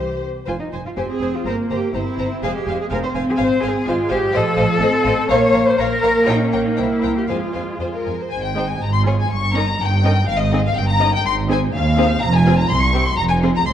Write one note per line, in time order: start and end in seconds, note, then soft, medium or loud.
0.00 0.26 C2 soft
0.00 0.26 G4 soft
0.00 0.24 C5 soft
0.00 0.25 C5 soft
0.46 0.56 F1 soft
0.46 0.52 F4 medium
0.46 0.54 C5 soft
0.46 0.55 G#5 soft
0.60 0.68 D#4 medium
0.72 0.82 F1 soft
0.72 0.80 C5 soft
0.72 0.82 G#5 soft
0.87 0.91 F4 medium
0.97 1.06 F1 soft
0.97 1.43 C4 medium
0.97 1.03 G4 medium
0.97 1.05 C5 soft
0.97 1.05 G#5 soft
1.11 1.34 G#4 medium
1.21 1.29 F1 soft
1.21 1.30 C5 soft
1.21 1.29 G#5 soft
1.36 1.48 F4 medium
1.45 1.53 G1 medium
1.45 1.95 A#3 medium
1.45 1.55 A#4 medium
1.45 1.55 C5 medium
1.45 1.54 A#5 soft
1.70 1.78 G1 soft
1.70 1.95 G4 medium
1.70 1.79 C5 soft
1.70 1.79 A#5 soft
1.94 2.02 G1 soft
1.94 2.42 C4 medium
1.94 2.42 E4 medium
1.94 2.02 C5 soft
1.94 2.02 A#5 soft
2.18 2.27 G1 soft
2.18 2.27 C5 soft
2.18 2.26 A#5 soft
2.43 2.51 F1 medium
2.43 2.91 G#3 medium
2.43 2.55 G#4 medium
2.43 2.52 C5 soft
2.43 2.51 F5 medium
2.43 2.51 G#5 soft
2.55 2.79 G4 medium
2.67 2.76 F1 soft
2.67 2.77 C5 soft
2.67 2.76 F5 soft
2.67 2.75 G#5 soft
2.81 2.85 G#4 medium
2.91 2.99 F1 medium
2.91 3.84 C4 medium
2.91 2.97 A#4 medium
2.91 3.00 C5 soft
2.91 2.99 F5 soft
2.91 2.99 G#5 soft
3.04 3.12 C5 medium
3.14 3.23 F1 medium
3.14 3.23 C5 soft
3.14 3.23 F5 soft
3.14 3.22 G#5 soft
3.29 3.33 G#4 medium
3.36 3.47 G#1 medium
3.36 3.47 C5 medium
3.36 3.46 F5 medium
3.36 3.44 G#5 medium
3.41 3.63 C5 medium
3.61 3.71 G#1 medium
3.61 3.87 G#4 medium
3.61 3.71 C5 soft
3.61 3.71 F5 soft
3.61 3.69 G#5 soft
3.85 3.95 G#1 medium
3.85 4.33 G#3 medium
3.85 4.11 F4 medium
3.85 3.95 C5 soft
3.85 3.96 F5 medium
3.85 3.93 G#5 medium
4.09 4.19 G#1 medium
4.09 4.34 G4 medium
4.09 4.18 C5 medium
4.09 4.18 F5 medium
4.09 4.17 G#5 medium
4.32 4.42 A1 medium
4.32 4.82 F3 medium
4.32 5.30 A4 loud
4.32 4.42 C5 medium
4.32 4.42 D#5 medium
4.32 4.40 F5 medium
4.57 4.66 A1 medium
4.57 4.65 C5 medium
4.57 4.65 D#5 soft
4.57 4.65 F5 medium
4.80 4.89 A1 medium
4.80 5.29 C4 medium
4.80 4.90 C5 medium
4.80 4.90 D#5 medium
4.80 4.88 F5 medium
5.03 5.13 A1 medium
5.03 5.14 C5 medium
5.03 5.14 D#5 medium
5.03 5.11 F5 medium
5.29 5.38 A#1 medium
5.29 5.77 A#3 medium
5.29 5.37 C#5 medium
5.29 5.66 C#5 loud
5.29 5.37 F5 medium
5.29 5.37 A#5 medium
5.52 5.62 A#1 medium
5.52 5.62 C#5 medium
5.52 5.63 F5 medium
5.52 5.60 A#5 medium
5.68 5.80 C5 medium
5.77 5.87 A#1 medium
5.77 7.26 A#3 medium
5.77 6.28 A#4 loud
5.77 5.87 C#5 medium
5.77 5.87 F5 medium
5.77 5.85 A#5 medium
6.03 6.11 A#1 medium
6.03 6.11 C#5 medium
6.03 6.11 F5 medium
6.03 6.11 A#5 medium
6.27 6.36 A#1 medium
6.27 6.41 D#4 medium
6.27 6.35 C#5 medium
6.27 6.35 G5 medium
6.27 6.35 A#5 medium
6.41 6.66 C#4 medium
6.52 6.61 A#1 medium
6.52 6.60 C#5 soft
6.52 6.60 G5 soft
6.52 6.60 A#5 soft
6.67 6.79 D#4 medium
6.77 6.86 C2 soft
6.77 7.16 E4 medium
6.77 6.85 C5 soft
6.77 6.85 G5 soft
6.77 6.85 A#5 soft
7.02 7.11 C2 medium
7.02 7.10 C5 soft
7.02 7.11 G5 soft
7.02 7.12 A#5 soft
7.18 7.22 G4 medium
7.28 7.37 F2 soft
7.28 8.05 G#3 soft
7.28 8.04 F4 medium
7.28 7.36 C5 soft
7.28 7.36 F5 soft
7.28 7.38 G#5 soft
7.53 7.63 F2 soft
7.53 7.61 C5 soft
7.53 7.62 F5 soft
7.53 7.64 G#5 soft
7.80 7.88 F2 soft
7.80 7.86 C5 soft
7.80 7.89 G#5 soft
7.93 8.18 A#4 soft
8.06 8.14 F2 soft
8.06 8.14 G#5 soft
8.20 8.32 C5 soft
8.31 8.73 G#1 medium
8.31 8.73 G#2 medium
8.31 8.42 G#5 medium
8.43 8.68 G5 medium
8.56 8.64 G#3 soft
8.56 8.64 D#4 soft
8.56 8.65 D#4 soft
8.56 8.65 C5 soft
8.70 8.82 G#5 medium
8.81 9.22 G#1 medium
8.81 9.22 G#2 medium
8.81 8.94 A#5 medium
8.93 9.01 C6 medium
9.05 9.13 G#3 soft
9.05 9.13 F4 medium
9.05 9.14 G#4 medium
9.05 9.14 C#5 medium
9.20 9.31 G#5 medium
9.30 9.71 G1 medium
9.30 9.71 G2 medium
9.30 9.55 C#6 medium
9.54 9.62 C#4 medium
9.54 9.62 D#4 medium
9.54 9.64 A#4 soft
9.54 9.64 D#5 soft
9.54 9.80 A#5 medium
9.79 10.20 G1 medium
9.79 10.20 G2 medium
9.79 10.28 G5 medium
10.03 10.11 C#4 medium
10.03 10.11 D#4 medium
10.03 10.12 A#4 medium
10.03 10.12 D#5 medium
10.27 10.68 G#1 medium
10.27 10.68 G#2 medium
10.27 10.39 F5 medium
10.39 10.63 D#5 medium
10.52 10.59 C4 medium
10.52 10.59 D#4 medium
10.52 10.61 G#4 medium
10.52 10.61 D#5 medium
10.65 10.76 F5 medium
10.75 11.16 G1 medium
10.75 11.17 G2 medium
10.75 10.89 G5 medium
10.89 11.12 A#5 medium
11.00 11.08 C#4 medium
11.00 11.08 D#4 medium
11.00 11.08 A#4 medium
11.00 11.09 D#5 medium
11.14 11.26 G5 medium
11.24 11.65 G#1 medium
11.24 11.65 G#2 medium
11.24 11.34 C6 loud
11.48 11.56 C4 medium
11.48 11.56 D#4 medium
11.48 11.57 G#4 medium
11.48 11.57 C5 medium
11.48 11.59 G#5 medium
11.73 12.14 D#2 medium
11.73 12.21 F5 medium
11.97 12.05 C4 medium
11.97 12.05 D#4 medium
11.97 12.05 G#4 medium
11.97 12.05 C5 medium
12.22 12.62 F1 medium
12.22 12.62 F2 medium
12.22 12.34 A#5 loud
12.35 12.58 G#5 medium
12.46 12.53 C4 medium
12.46 12.54 F4 medium
12.46 12.54 G#4 medium
12.46 12.54 C5 medium
12.59 12.70 A#5 medium
12.69 13.10 C2 medium
12.69 12.81 C6 loud
12.81 13.06 C#6 medium
12.93 13.01 C4 medium
12.93 13.01 E4 medium
12.93 13.01 G4 medium
12.93 13.01 C5 medium
13.08 13.19 C6 medium
13.18 13.58 F1 medium
13.18 13.58 F2 medium
13.18 13.23 A#5 loud
13.30 13.38 G#5 medium
13.42 13.50 C4 medium
13.42 13.50 F4 medium
13.42 13.51 G#4 medium
13.42 13.50 C5 medium
13.56 13.67 A#5 medium
13.66 13.73 C#2 medium
13.66 13.71 C6 medium